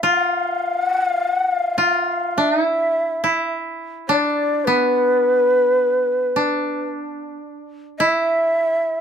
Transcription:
0, 0, Header, 1, 3, 480
1, 0, Start_track
1, 0, Tempo, 1165049
1, 14, Time_signature, 4, 2, 24, 8
1, 974, Tempo, 1140684
1, 2414, Tempo, 1096892
1, 3823, End_track
2, 0, Start_track
2, 0, Title_t, "Shakuhachi"
2, 0, Program_c, 0, 77
2, 24, Note_on_c, 0, 77, 87
2, 358, Note_off_c, 0, 77, 0
2, 358, Note_on_c, 0, 78, 87
2, 448, Note_off_c, 0, 78, 0
2, 448, Note_on_c, 0, 77, 87
2, 543, Note_off_c, 0, 77, 0
2, 543, Note_on_c, 0, 78, 87
2, 634, Note_off_c, 0, 78, 0
2, 634, Note_on_c, 0, 77, 87
2, 982, Note_on_c, 0, 76, 71
2, 988, Note_off_c, 0, 77, 0
2, 1461, Note_off_c, 0, 76, 0
2, 1697, Note_on_c, 0, 74, 77
2, 1936, Note_on_c, 0, 71, 83
2, 1942, Note_off_c, 0, 74, 0
2, 2900, Note_off_c, 0, 71, 0
2, 3375, Note_on_c, 0, 76, 84
2, 3823, Note_off_c, 0, 76, 0
2, 3823, End_track
3, 0, Start_track
3, 0, Title_t, "Koto"
3, 0, Program_c, 1, 107
3, 13, Note_on_c, 1, 65, 73
3, 731, Note_off_c, 1, 65, 0
3, 733, Note_on_c, 1, 65, 63
3, 979, Note_on_c, 1, 62, 59
3, 1004, Note_off_c, 1, 65, 0
3, 1080, Note_off_c, 1, 62, 0
3, 1080, Note_on_c, 1, 64, 59
3, 1340, Note_off_c, 1, 64, 0
3, 1341, Note_on_c, 1, 64, 59
3, 1701, Note_on_c, 1, 62, 66
3, 1945, Note_on_c, 1, 59, 65
3, 2294, Note_off_c, 1, 64, 0
3, 2664, Note_off_c, 1, 62, 0
3, 2666, Note_on_c, 1, 62, 53
3, 3104, Note_off_c, 1, 59, 0
3, 3383, Note_on_c, 1, 64, 65
3, 3727, Note_off_c, 1, 62, 0
3, 3823, Note_off_c, 1, 64, 0
3, 3823, End_track
0, 0, End_of_file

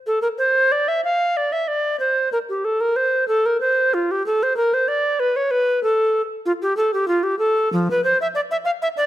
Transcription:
0, 0, Header, 1, 2, 480
1, 0, Start_track
1, 0, Tempo, 646552
1, 44, Time_signature, 3, 2, 24, 8
1, 2923, Tempo, 628931
1, 6836, End_track
2, 0, Start_track
2, 0, Title_t, "Recorder"
2, 0, Program_c, 0, 74
2, 50, Note_on_c, 0, 69, 61
2, 159, Note_off_c, 0, 69, 0
2, 163, Note_on_c, 0, 70, 56
2, 208, Note_off_c, 0, 70, 0
2, 284, Note_on_c, 0, 72, 63
2, 533, Note_on_c, 0, 74, 68
2, 544, Note_off_c, 0, 72, 0
2, 655, Note_on_c, 0, 76, 62
2, 666, Note_off_c, 0, 74, 0
2, 771, Note_off_c, 0, 76, 0
2, 775, Note_on_c, 0, 77, 66
2, 1017, Note_on_c, 0, 74, 72
2, 1028, Note_off_c, 0, 77, 0
2, 1131, Note_on_c, 0, 76, 61
2, 1143, Note_off_c, 0, 74, 0
2, 1246, Note_on_c, 0, 74, 65
2, 1257, Note_off_c, 0, 76, 0
2, 1477, Note_off_c, 0, 74, 0
2, 1482, Note_on_c, 0, 72, 62
2, 1716, Note_off_c, 0, 72, 0
2, 1726, Note_on_c, 0, 70, 65
2, 1770, Note_off_c, 0, 70, 0
2, 1852, Note_on_c, 0, 67, 61
2, 1964, Note_on_c, 0, 69, 73
2, 1976, Note_off_c, 0, 67, 0
2, 2083, Note_on_c, 0, 70, 64
2, 2094, Note_off_c, 0, 69, 0
2, 2199, Note_on_c, 0, 72, 70
2, 2210, Note_off_c, 0, 70, 0
2, 2430, Note_off_c, 0, 72, 0
2, 2435, Note_on_c, 0, 69, 76
2, 2567, Note_on_c, 0, 70, 69
2, 2578, Note_off_c, 0, 69, 0
2, 2673, Note_off_c, 0, 70, 0
2, 2677, Note_on_c, 0, 72, 73
2, 2925, Note_on_c, 0, 65, 73
2, 2936, Note_off_c, 0, 72, 0
2, 3056, Note_on_c, 0, 67, 69
2, 3068, Note_off_c, 0, 65, 0
2, 3167, Note_off_c, 0, 67, 0
2, 3171, Note_on_c, 0, 69, 71
2, 3299, Note_on_c, 0, 72, 71
2, 3310, Note_off_c, 0, 69, 0
2, 3398, Note_off_c, 0, 72, 0
2, 3403, Note_on_c, 0, 70, 90
2, 3534, Note_on_c, 0, 72, 75
2, 3545, Note_off_c, 0, 70, 0
2, 3644, Note_on_c, 0, 74, 78
2, 3655, Note_off_c, 0, 72, 0
2, 3884, Note_on_c, 0, 71, 92
2, 3896, Note_off_c, 0, 74, 0
2, 4011, Note_on_c, 0, 73, 75
2, 4022, Note_off_c, 0, 71, 0
2, 4123, Note_on_c, 0, 71, 88
2, 4134, Note_off_c, 0, 73, 0
2, 4365, Note_off_c, 0, 71, 0
2, 4370, Note_on_c, 0, 69, 84
2, 4663, Note_off_c, 0, 69, 0
2, 4846, Note_on_c, 0, 65, 87
2, 4892, Note_off_c, 0, 65, 0
2, 4973, Note_on_c, 0, 67, 78
2, 5080, Note_off_c, 0, 67, 0
2, 5084, Note_on_c, 0, 69, 81
2, 5196, Note_off_c, 0, 69, 0
2, 5213, Note_on_c, 0, 67, 77
2, 5317, Note_off_c, 0, 67, 0
2, 5322, Note_on_c, 0, 65, 81
2, 5438, Note_on_c, 0, 67, 79
2, 5450, Note_off_c, 0, 65, 0
2, 5552, Note_off_c, 0, 67, 0
2, 5557, Note_on_c, 0, 69, 81
2, 5805, Note_off_c, 0, 69, 0
2, 5815, Note_on_c, 0, 53, 84
2, 5937, Note_off_c, 0, 53, 0
2, 5953, Note_on_c, 0, 71, 84
2, 6051, Note_off_c, 0, 71, 0
2, 6056, Note_on_c, 0, 72, 81
2, 6173, Note_off_c, 0, 72, 0
2, 6187, Note_on_c, 0, 76, 77
2, 6233, Note_off_c, 0, 76, 0
2, 6288, Note_on_c, 0, 74, 90
2, 6334, Note_off_c, 0, 74, 0
2, 6412, Note_on_c, 0, 76, 80
2, 6458, Note_off_c, 0, 76, 0
2, 6517, Note_on_c, 0, 77, 88
2, 6563, Note_off_c, 0, 77, 0
2, 6651, Note_on_c, 0, 76, 77
2, 6696, Note_off_c, 0, 76, 0
2, 6764, Note_on_c, 0, 74, 89
2, 6836, Note_off_c, 0, 74, 0
2, 6836, End_track
0, 0, End_of_file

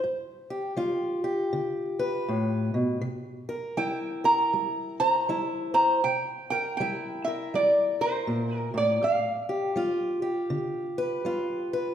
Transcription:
0, 0, Header, 1, 3, 480
1, 0, Start_track
1, 0, Tempo, 748130
1, 24, Time_signature, 4, 2, 24, 8
1, 7663, End_track
2, 0, Start_track
2, 0, Title_t, "Resonator guitar played with a steel bar"
2, 0, Program_c, 0, 25
2, 2420, Note_on_c, 0, 79, 89
2, 2701, Note_off_c, 0, 79, 0
2, 2727, Note_on_c, 0, 82, 97
2, 3199, Note_off_c, 0, 82, 0
2, 3207, Note_on_c, 0, 82, 104
2, 3677, Note_off_c, 0, 82, 0
2, 3685, Note_on_c, 0, 82, 89
2, 3874, Note_on_c, 0, 79, 92
2, 3876, Note_off_c, 0, 82, 0
2, 4165, Note_off_c, 0, 79, 0
2, 4172, Note_on_c, 0, 79, 92
2, 4336, Note_off_c, 0, 79, 0
2, 4343, Note_on_c, 0, 79, 85
2, 4648, Note_on_c, 0, 76, 81
2, 4653, Note_off_c, 0, 79, 0
2, 4837, Note_off_c, 0, 76, 0
2, 4846, Note_on_c, 0, 74, 84
2, 5138, Note_off_c, 0, 74, 0
2, 5141, Note_on_c, 0, 72, 85
2, 5500, Note_off_c, 0, 72, 0
2, 5500, Note_on_c, 0, 70, 85
2, 5628, Note_off_c, 0, 70, 0
2, 5630, Note_on_c, 0, 74, 85
2, 5799, Note_on_c, 0, 77, 84
2, 5807, Note_off_c, 0, 74, 0
2, 6726, Note_off_c, 0, 77, 0
2, 7663, End_track
3, 0, Start_track
3, 0, Title_t, "Steel-string acoustic guitar"
3, 0, Program_c, 1, 25
3, 23, Note_on_c, 1, 43, 71
3, 323, Note_on_c, 1, 67, 53
3, 468, Note_off_c, 1, 43, 0
3, 491, Note_on_c, 1, 55, 61
3, 496, Note_on_c, 1, 65, 62
3, 793, Note_off_c, 1, 67, 0
3, 795, Note_on_c, 1, 67, 54
3, 943, Note_off_c, 1, 55, 0
3, 980, Note_on_c, 1, 50, 65
3, 1279, Note_on_c, 1, 71, 67
3, 1428, Note_off_c, 1, 50, 0
3, 1466, Note_on_c, 1, 45, 63
3, 1756, Note_off_c, 1, 45, 0
3, 1759, Note_on_c, 1, 47, 57
3, 1922, Note_off_c, 1, 65, 0
3, 1924, Note_off_c, 1, 71, 0
3, 1932, Note_off_c, 1, 47, 0
3, 1934, Note_on_c, 1, 48, 78
3, 2235, Note_off_c, 1, 67, 0
3, 2238, Note_on_c, 1, 70, 57
3, 2386, Note_off_c, 1, 48, 0
3, 2419, Note_on_c, 1, 55, 67
3, 2423, Note_on_c, 1, 64, 59
3, 2719, Note_off_c, 1, 70, 0
3, 2722, Note_on_c, 1, 70, 56
3, 2869, Note_off_c, 1, 55, 0
3, 2909, Note_on_c, 1, 55, 64
3, 3210, Note_on_c, 1, 72, 65
3, 3354, Note_off_c, 1, 55, 0
3, 3387, Note_off_c, 1, 64, 0
3, 3394, Note_on_c, 1, 55, 59
3, 3397, Note_on_c, 1, 64, 57
3, 3674, Note_off_c, 1, 72, 0
3, 3682, Note_on_c, 1, 72, 66
3, 3836, Note_off_c, 1, 55, 0
3, 3847, Note_off_c, 1, 70, 0
3, 3847, Note_off_c, 1, 72, 0
3, 3853, Note_off_c, 1, 64, 0
3, 3875, Note_on_c, 1, 48, 75
3, 4182, Note_on_c, 1, 70, 56
3, 4317, Note_off_c, 1, 48, 0
3, 4364, Note_on_c, 1, 55, 65
3, 4369, Note_on_c, 1, 64, 59
3, 4655, Note_off_c, 1, 70, 0
3, 4668, Note_on_c, 1, 70, 53
3, 4802, Note_off_c, 1, 55, 0
3, 4838, Note_on_c, 1, 55, 67
3, 5131, Note_off_c, 1, 70, 0
3, 5139, Note_on_c, 1, 70, 61
3, 5278, Note_off_c, 1, 55, 0
3, 5308, Note_on_c, 1, 46, 58
3, 5604, Note_off_c, 1, 46, 0
3, 5607, Note_on_c, 1, 45, 64
3, 5774, Note_off_c, 1, 70, 0
3, 5776, Note_off_c, 1, 64, 0
3, 5789, Note_off_c, 1, 45, 0
3, 5791, Note_on_c, 1, 43, 74
3, 6089, Note_on_c, 1, 67, 59
3, 6233, Note_off_c, 1, 43, 0
3, 6260, Note_on_c, 1, 55, 67
3, 6267, Note_on_c, 1, 65, 63
3, 6555, Note_off_c, 1, 67, 0
3, 6558, Note_on_c, 1, 67, 58
3, 6706, Note_off_c, 1, 55, 0
3, 6737, Note_on_c, 1, 50, 70
3, 7045, Note_on_c, 1, 71, 70
3, 7184, Note_off_c, 1, 50, 0
3, 7216, Note_off_c, 1, 65, 0
3, 7217, Note_on_c, 1, 55, 61
3, 7224, Note_on_c, 1, 65, 56
3, 7521, Note_off_c, 1, 71, 0
3, 7528, Note_on_c, 1, 71, 66
3, 7662, Note_off_c, 1, 55, 0
3, 7663, Note_off_c, 1, 65, 0
3, 7663, Note_off_c, 1, 67, 0
3, 7663, Note_off_c, 1, 71, 0
3, 7663, End_track
0, 0, End_of_file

